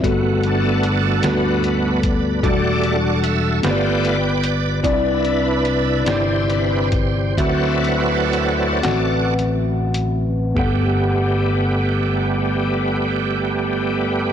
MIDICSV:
0, 0, Header, 1, 5, 480
1, 0, Start_track
1, 0, Key_signature, 1, "major"
1, 0, Tempo, 801068
1, 23, Time_signature, 6, 3, 24, 8
1, 3383, Tempo, 862069
1, 4343, Tempo, 953895
1, 4823, Tempo, 1048951
1, 5303, Tempo, 1188119
1, 5783, Tempo, 1273885
1, 7202, End_track
2, 0, Start_track
2, 0, Title_t, "Tine electric piano"
2, 0, Program_c, 0, 4
2, 0, Control_c, 0, 64, 127
2, 15, Note_on_c, 0, 55, 82
2, 18, Note_on_c, 0, 43, 69
2, 20, Note_on_c, 0, 59, 78
2, 21, Note_on_c, 0, 66, 75
2, 25, Note_on_c, 0, 69, 86
2, 31, Control_c, 0, 64, 0
2, 134, Control_c, 0, 64, 127
2, 581, Note_off_c, 0, 55, 0
2, 583, Note_off_c, 0, 59, 0
2, 584, Note_off_c, 0, 66, 0
2, 586, Note_off_c, 0, 69, 0
2, 715, Note_off_c, 0, 43, 0
2, 734, Note_on_c, 0, 55, 54
2, 738, Note_on_c, 0, 59, 53
2, 740, Note_on_c, 0, 66, 51
2, 744, Note_on_c, 0, 69, 61
2, 1300, Note_off_c, 0, 55, 0
2, 1302, Note_off_c, 0, 59, 0
2, 1303, Note_off_c, 0, 66, 0
2, 1305, Note_off_c, 0, 69, 0
2, 1453, Note_on_c, 0, 54, 55
2, 1456, Note_on_c, 0, 52, 57
2, 1456, Note_on_c, 0, 62, 60
2, 1457, Note_on_c, 0, 66, 62
2, 1458, Note_on_c, 0, 69, 76
2, 1467, Control_c, 0, 64, 0
2, 1489, Note_on_c, 0, 55, 68
2, 1495, Note_off_c, 0, 54, 0
2, 1590, Control_c, 0, 64, 127
2, 2020, Note_off_c, 0, 62, 0
2, 2021, Note_off_c, 0, 66, 0
2, 2022, Note_off_c, 0, 69, 0
2, 2037, Note_off_c, 0, 55, 0
2, 2153, Note_off_c, 0, 52, 0
2, 2172, Note_on_c, 0, 59, 57
2, 2176, Note_on_c, 0, 43, 53
2, 2177, Note_on_c, 0, 65, 54
2, 2177, Note_on_c, 0, 67, 52
2, 2182, Note_on_c, 0, 72, 49
2, 2186, Control_c, 0, 64, 0
2, 2219, Note_off_c, 0, 72, 0
2, 2219, Note_on_c, 0, 74, 57
2, 2300, Control_c, 0, 64, 127
2, 2738, Note_off_c, 0, 59, 0
2, 2741, Note_off_c, 0, 65, 0
2, 2741, Note_off_c, 0, 67, 0
2, 2762, Note_off_c, 0, 74, 0
2, 2873, Note_off_c, 0, 43, 0
2, 2897, Note_on_c, 0, 60, 80
2, 2899, Note_on_c, 0, 48, 64
2, 2899, Note_on_c, 0, 64, 73
2, 2900, Note_on_c, 0, 71, 75
2, 2903, Note_on_c, 0, 74, 89
2, 2906, Control_c, 0, 64, 0
2, 3016, Control_c, 0, 64, 127
2, 3463, Note_off_c, 0, 60, 0
2, 3464, Note_off_c, 0, 64, 0
2, 3465, Note_off_c, 0, 71, 0
2, 3466, Note_off_c, 0, 74, 0
2, 3593, Note_off_c, 0, 48, 0
2, 3613, Note_on_c, 0, 60, 55
2, 3616, Note_on_c, 0, 71, 47
2, 3617, Note_on_c, 0, 64, 47
2, 3619, Note_on_c, 0, 74, 57
2, 4178, Note_off_c, 0, 60, 0
2, 4180, Note_off_c, 0, 64, 0
2, 4180, Note_off_c, 0, 71, 0
2, 4182, Note_off_c, 0, 74, 0
2, 4345, Note_on_c, 0, 60, 64
2, 4345, Note_on_c, 0, 66, 60
2, 4348, Note_on_c, 0, 50, 51
2, 4349, Note_on_c, 0, 71, 56
2, 4350, Control_c, 0, 64, 0
2, 4350, Note_on_c, 0, 76, 71
2, 4435, Control_c, 0, 64, 127
2, 4904, Note_off_c, 0, 60, 0
2, 4904, Note_off_c, 0, 66, 0
2, 4906, Note_off_c, 0, 71, 0
2, 4906, Note_off_c, 0, 76, 0
2, 5041, Note_off_c, 0, 50, 0
2, 5052, Note_on_c, 0, 60, 60
2, 5054, Note_on_c, 0, 66, 58
2, 5054, Note_on_c, 0, 71, 55
2, 5056, Note_on_c, 0, 78, 69
2, 5618, Note_off_c, 0, 60, 0
2, 5618, Note_off_c, 0, 66, 0
2, 5618, Note_off_c, 0, 71, 0
2, 5619, Note_off_c, 0, 78, 0
2, 5777, Note_on_c, 0, 59, 62
2, 5782, Note_on_c, 0, 67, 61
2, 5786, Note_on_c, 0, 43, 64
2, 5789, Control_c, 0, 64, 0
2, 5789, Note_on_c, 0, 69, 62
2, 5794, Note_on_c, 0, 78, 69
2, 5851, Control_c, 0, 64, 127
2, 7202, Note_off_c, 0, 43, 0
2, 7202, Note_off_c, 0, 59, 0
2, 7202, Note_off_c, 0, 67, 0
2, 7202, Note_off_c, 0, 69, 0
2, 7202, Note_off_c, 0, 78, 0
2, 7202, End_track
3, 0, Start_track
3, 0, Title_t, "Tonewheel organ"
3, 0, Program_c, 1, 16
3, 19, Note_on_c, 1, 57, 45
3, 20, Note_on_c, 1, 59, 41
3, 25, Note_on_c, 1, 66, 52
3, 273, Note_off_c, 1, 66, 0
3, 278, Note_on_c, 1, 62, 49
3, 280, Note_on_c, 1, 66, 51
3, 286, Note_on_c, 1, 69, 78
3, 735, Note_off_c, 1, 66, 0
3, 742, Note_off_c, 1, 62, 0
3, 742, Note_on_c, 1, 66, 54
3, 749, Note_on_c, 1, 62, 53
3, 752, Note_on_c, 1, 71, 73
3, 767, Note_off_c, 1, 69, 0
3, 976, Note_off_c, 1, 57, 0
3, 981, Note_off_c, 1, 59, 0
3, 981, Note_off_c, 1, 66, 0
3, 983, Note_on_c, 1, 57, 38
3, 988, Note_on_c, 1, 59, 35
3, 988, Note_on_c, 1, 66, 44
3, 1197, Note_off_c, 1, 57, 0
3, 1200, Note_off_c, 1, 59, 0
3, 1200, Note_off_c, 1, 66, 0
3, 1440, Note_off_c, 1, 62, 0
3, 1456, Note_on_c, 1, 55, 44
3, 1459, Note_on_c, 1, 57, 40
3, 1459, Note_on_c, 1, 74, 81
3, 1460, Note_on_c, 1, 66, 61
3, 1462, Note_on_c, 1, 62, 43
3, 1469, Note_on_c, 1, 69, 56
3, 1487, Note_off_c, 1, 71, 0
3, 1777, Note_off_c, 1, 55, 0
3, 1778, Note_off_c, 1, 57, 0
3, 1779, Note_off_c, 1, 62, 0
3, 1915, Note_off_c, 1, 74, 0
3, 1940, Note_on_c, 1, 76, 83
3, 2156, Note_off_c, 1, 66, 0
3, 2160, Note_off_c, 1, 69, 0
3, 2163, Note_off_c, 1, 76, 0
3, 2176, Note_on_c, 1, 57, 47
3, 2181, Note_on_c, 1, 59, 43
3, 2182, Note_on_c, 1, 65, 49
3, 2183, Note_on_c, 1, 71, 60
3, 2186, Note_on_c, 1, 79, 77
3, 2187, Note_on_c, 1, 74, 61
3, 2496, Note_off_c, 1, 57, 0
3, 2499, Note_off_c, 1, 59, 0
3, 2499, Note_off_c, 1, 65, 0
3, 2698, Note_off_c, 1, 79, 0
3, 2876, Note_off_c, 1, 71, 0
3, 2878, Note_off_c, 1, 74, 0
3, 2892, Note_on_c, 1, 71, 48
3, 2895, Note_on_c, 1, 62, 41
3, 2901, Note_on_c, 1, 64, 51
3, 3124, Note_off_c, 1, 71, 0
3, 3129, Note_off_c, 1, 62, 0
3, 3131, Note_on_c, 1, 71, 84
3, 3132, Note_off_c, 1, 64, 0
3, 3136, Note_on_c, 1, 62, 54
3, 3139, Note_on_c, 1, 64, 54
3, 3615, Note_on_c, 1, 72, 76
3, 3617, Note_off_c, 1, 64, 0
3, 3623, Note_on_c, 1, 64, 56
3, 3623, Note_on_c, 1, 67, 55
3, 3625, Note_off_c, 1, 71, 0
3, 3827, Note_off_c, 1, 62, 0
3, 3853, Note_off_c, 1, 64, 0
3, 3855, Note_on_c, 1, 71, 35
3, 3858, Note_on_c, 1, 62, 35
3, 3860, Note_on_c, 1, 64, 44
3, 4073, Note_off_c, 1, 71, 0
3, 4075, Note_off_c, 1, 62, 0
3, 4076, Note_off_c, 1, 64, 0
3, 4326, Note_off_c, 1, 67, 0
3, 4344, Note_on_c, 1, 54, 44
3, 4345, Note_on_c, 1, 60, 42
3, 4345, Note_on_c, 1, 71, 41
3, 4348, Note_on_c, 1, 66, 60
3, 4349, Note_on_c, 1, 69, 60
3, 4352, Note_on_c, 1, 74, 76
3, 4356, Note_on_c, 1, 64, 52
3, 4363, Note_off_c, 1, 72, 0
3, 5039, Note_off_c, 1, 54, 0
3, 5039, Note_off_c, 1, 60, 0
3, 5039, Note_off_c, 1, 71, 0
3, 5044, Note_off_c, 1, 64, 0
3, 5287, Note_off_c, 1, 66, 0
3, 5288, Note_off_c, 1, 69, 0
3, 5289, Note_off_c, 1, 74, 0
3, 5785, Note_on_c, 1, 67, 64
3, 5786, Note_on_c, 1, 59, 56
3, 5787, Note_on_c, 1, 55, 62
3, 5787, Note_on_c, 1, 57, 57
3, 7202, Note_off_c, 1, 55, 0
3, 7202, Note_off_c, 1, 57, 0
3, 7202, Note_off_c, 1, 59, 0
3, 7202, Note_off_c, 1, 67, 0
3, 7202, End_track
4, 0, Start_track
4, 0, Title_t, "Fingered electric bass"
4, 0, Program_c, 2, 33
4, 22, Note_on_c, 2, 31, 91
4, 716, Note_off_c, 2, 31, 0
4, 738, Note_on_c, 2, 38, 81
4, 1434, Note_off_c, 2, 38, 0
4, 1460, Note_on_c, 2, 28, 84
4, 2155, Note_off_c, 2, 28, 0
4, 2183, Note_on_c, 2, 31, 86
4, 2876, Note_off_c, 2, 31, 0
4, 2898, Note_on_c, 2, 36, 90
4, 3593, Note_off_c, 2, 36, 0
4, 3615, Note_on_c, 2, 31, 71
4, 4321, Note_off_c, 2, 31, 0
4, 4346, Note_on_c, 2, 38, 76
4, 5040, Note_off_c, 2, 38, 0
4, 5065, Note_on_c, 2, 33, 76
4, 5771, Note_off_c, 2, 33, 0
4, 5784, Note_on_c, 2, 31, 79
4, 7202, Note_off_c, 2, 31, 0
4, 7202, End_track
5, 0, Start_track
5, 0, Title_t, "Drums"
5, 22, Note_on_c, 9, 36, 90
5, 25, Note_on_c, 9, 42, 85
5, 82, Note_off_c, 9, 36, 0
5, 85, Note_off_c, 9, 42, 0
5, 261, Note_on_c, 9, 42, 43
5, 320, Note_off_c, 9, 42, 0
5, 500, Note_on_c, 9, 42, 59
5, 560, Note_off_c, 9, 42, 0
5, 737, Note_on_c, 9, 42, 76
5, 744, Note_on_c, 9, 38, 92
5, 797, Note_off_c, 9, 42, 0
5, 804, Note_off_c, 9, 38, 0
5, 982, Note_on_c, 9, 42, 42
5, 1042, Note_off_c, 9, 42, 0
5, 1219, Note_on_c, 9, 42, 69
5, 1221, Note_on_c, 9, 36, 85
5, 1279, Note_off_c, 9, 42, 0
5, 1281, Note_off_c, 9, 36, 0
5, 1458, Note_on_c, 9, 36, 92
5, 1461, Note_on_c, 9, 42, 81
5, 1518, Note_off_c, 9, 36, 0
5, 1520, Note_off_c, 9, 42, 0
5, 1699, Note_on_c, 9, 42, 44
5, 1759, Note_off_c, 9, 42, 0
5, 1939, Note_on_c, 9, 42, 61
5, 1999, Note_off_c, 9, 42, 0
5, 2177, Note_on_c, 9, 42, 72
5, 2184, Note_on_c, 9, 38, 87
5, 2237, Note_off_c, 9, 42, 0
5, 2244, Note_off_c, 9, 38, 0
5, 2425, Note_on_c, 9, 42, 42
5, 2485, Note_off_c, 9, 42, 0
5, 2658, Note_on_c, 9, 42, 68
5, 2718, Note_off_c, 9, 42, 0
5, 2900, Note_on_c, 9, 36, 88
5, 2902, Note_on_c, 9, 42, 83
5, 2960, Note_off_c, 9, 36, 0
5, 2962, Note_off_c, 9, 42, 0
5, 3143, Note_on_c, 9, 42, 42
5, 3203, Note_off_c, 9, 42, 0
5, 3386, Note_on_c, 9, 42, 58
5, 3441, Note_off_c, 9, 42, 0
5, 3616, Note_on_c, 9, 42, 70
5, 3623, Note_on_c, 9, 38, 88
5, 3672, Note_off_c, 9, 42, 0
5, 3678, Note_off_c, 9, 38, 0
5, 3857, Note_on_c, 9, 42, 40
5, 3912, Note_off_c, 9, 42, 0
5, 4092, Note_on_c, 9, 42, 69
5, 4096, Note_on_c, 9, 36, 79
5, 4148, Note_off_c, 9, 42, 0
5, 4152, Note_off_c, 9, 36, 0
5, 4346, Note_on_c, 9, 36, 84
5, 4349, Note_on_c, 9, 42, 84
5, 4397, Note_off_c, 9, 36, 0
5, 4399, Note_off_c, 9, 42, 0
5, 4581, Note_on_c, 9, 42, 41
5, 4632, Note_off_c, 9, 42, 0
5, 4827, Note_on_c, 9, 42, 57
5, 4873, Note_off_c, 9, 42, 0
5, 5057, Note_on_c, 9, 42, 71
5, 5062, Note_on_c, 9, 38, 87
5, 5102, Note_off_c, 9, 42, 0
5, 5108, Note_off_c, 9, 38, 0
5, 5309, Note_on_c, 9, 42, 39
5, 5349, Note_off_c, 9, 42, 0
5, 5534, Note_on_c, 9, 42, 68
5, 5574, Note_off_c, 9, 42, 0
5, 5785, Note_on_c, 9, 36, 79
5, 5785, Note_on_c, 9, 43, 72
5, 5822, Note_off_c, 9, 43, 0
5, 5823, Note_off_c, 9, 36, 0
5, 7202, End_track
0, 0, End_of_file